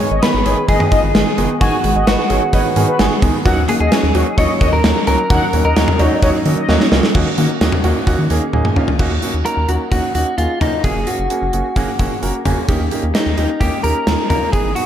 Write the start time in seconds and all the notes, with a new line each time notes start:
Already playing: C#5
0.00 D#3 G#3 B3 D#4 G#4
0.11 G#1 D#5
0.22 D#3 G#3 B3 D#4 A#4 B4, snare, closed hi-hat
0.34 G#1
0.45 G#1 D#3 G#3 B3 D#4 G#4 C#5, closed hi-hat
0.68 G#1 D#3 G#3 B3 D#4 G#4 D#5, kick, closed hi-hat
0.80 mid tom
0.91 G#1 D#3 G#3 B3 D#4 F4 D#5, kick, closed hi-hat
1.03 G#1
1.15 G#1 D#3 G#3 B3 D#4 G#4, snare, closed hi-hat
1.38 F#1 D#3 G#3 B3 D#4 G#4, closed hi-hat
1.61 G#1 D#3 G#3 B3 D#4 F#4 G#4 G#5, kick, closed hi-hat
1.84 G#1 D#3 G#3 B3 D#4 G#4, closed hi-hat
1.95 G#1 D#5
2.07 G#1 D#3 G#3 B3 D#4 F#4 B4, snare, closed hi-hat
2.30 G#1 D#3 G#3 B3 D#4 G#4 C#5, closed hi-hat
2.53 G#1 D#3 G#3 B3 D#4 B4 C#5 D#5, kick, closed hi-hat
2.76 G#2 D#3 G#3 B3 D#4 G#4, closed hi-hat
2.88 B4
2.99 G#1 D#3 G#3 B3 D#4 G#4, snare, closed hi-hat
3.22 C#2 D#3 G#3 B3 D#4 G#4, kick, closed hi-hat
3.45 D#2 D#3 F#3 A#3 C#4 D#4 F#4 F#5, kick, closed hi-hat
3.57 D#2
3.68 F#3 A#3 C#4 D#4 F#4 G#4, closed hi-hat
3.80 D#2 G#4 D#5
3.92 F#3 A#3 C#4 D#4 F#4, snare, closed hi-hat
4.03 D#2
4.15 D#2 F#3 A#3 C#4 D#4 F#4 C#5, closed hi-hat
4.38 D#2 F#3 A#3 C#4 D#4 F4 C#5 D#5, kick, closed hi-hat
4.61 D#2 D#3 F#3 A#3 C#4 D#4 F#4 D#5, kick, closed hi-hat
4.73 D#2 A#4
4.84 D#2 F#3 A#3 C#4 D#4 F#4, snare, closed hi-hat
5.07 C#2 F#3 A#3 C#4 D#4 F#4 A#4, closed hi-hat
5.30 D#2 D#3 F#3 A#3 C#4 D#4 F#4 F#5, kick, closed hi-hat
5.53 D#2 F#3 A#3 C#4 D#4 F#4, closed hi-hat
5.65 D#2 A#4 D#5
5.76 D#2 F#3 A#3 C#4 D#4 F#4, snare, closed hi-hat
5.88 mid tom
5.99 D#2 F#3 A#3 C#4 D#4 F#4 C#5, closed hi-hat, cowbell
6.22 D#2 F#3 A#3 C#4 D#4 F#4 C#5 D#5, kick, closed hi-hat
6.46 D#3 F#3 A#3 C#4 D#4 F#4, closed hi-hat
6.57 D#5
6.69 D#2 F#3 A#3 C#4 D#4 F#4, snare
6.80 snare
6.92 C#2 F#3 A#3 C#4 D#4 F4, snare
7.03 snare
7.15 D#2 D#3 A#3 C#4 D#4 F#4, kick, crash
7.38 D#3 A#3 C#4 D#4 F#4, closed hi-hat
7.61 D#2 A#3 C#4 D#4 F#4, snare, closed hi-hat
7.72 mid tom
7.84 D#2 A#3 C#4 D#4 F#4, closed hi-hat
8.07 D#2 A#3 C#4 D#4 F#4, kick, closed hi-hat
8.19 D#3
8.30 D#2 D#3 A#3 C#4 D#4 G#4, closed hi-hat
8.53 D#2 A#3 C#4 D#4 G#4, high tom
8.65 mid tom
8.76 D#2 A#3 C#4 D#4 F4, mid tom
8.88 floor tom
8.99 D#2 A#3 C#4 D#4 F#4, kick, crash
9.11 D#2
9.22 A#3 C#4 D#4 F#4, closed hi-hat
9.34 D#2
9.45 A#3 C#4 D#4 F#4 A#4, closed hi-hat
9.57 D#2
9.69 D#2 A#3 C#4 D#4 F#4, closed hi-hat
9.92 D#2 A#3 C#4 D#4 F#4, kick, closed hi-hat
10.15 D#2 A#3 C#4 D#4 F#4, closed hi-hat
10.38 D#2 A#3 C#4 D#4 F4 G#4, closed hi-hat
10.61 D#2 A#3 C#4 D#4 F4, closed hi-hat, mid tom
10.84 F#1 A#3 C#4 F#4 G#4, kick, closed hi-hat
10.96 F#1
11.07 A#3 C#4 F#4 G#4, closed hi-hat
11.19 F#1
11.30 A#3 C#4 F#4 G#4, closed hi-hat
11.42 F#1
11.53 F#1 A#3 C#4 F#4 G#4, closed hi-hat
11.76 F#1 A#3 C#4 F#4 G#4, kick, closed hi-hat
11.99 F#1 A#3 C#4 F#4 G#4 F#5, kick, closed hi-hat
12.23 F#1 A#3 C#4 F#4 A#4 A#5, closed hi-hat
12.45 F#1 A#3 C#4 F#4 G#4, closed hi-hat, mid tom
12.69 D#2 A#3 C#4 D#4 G4, kick, closed hi-hat
12.80 D#2
12.91 A#3 C#4 D#4 G4, closed hi-hat
13.03 D#2
13.15 A#3 C#4 D#4 G4, snare, closed hi-hat
13.26 D#2
13.38 D#2 A#3 C#4 D#4 G4, closed hi-hat
13.60 D#2 A#3 C#4 D#4 G4, kick, closed hi-hat
13.84 D#2 A#3 C#4 D#4 G4 A#4, closed hi-hat
14.07 D#2 A#3 C#4 D#4 F4, snare, closed hi-hat
14.30 D#2 A#3 C#4 D#4 F4 A#4, closed hi-hat, mid tom
14.52 G#1 G#3 B3 D#4 G#4, kick, closed hi-hat
14.65 G#1
14.75 G#3 B3 D#4 F#4 G#4, closed hi-hat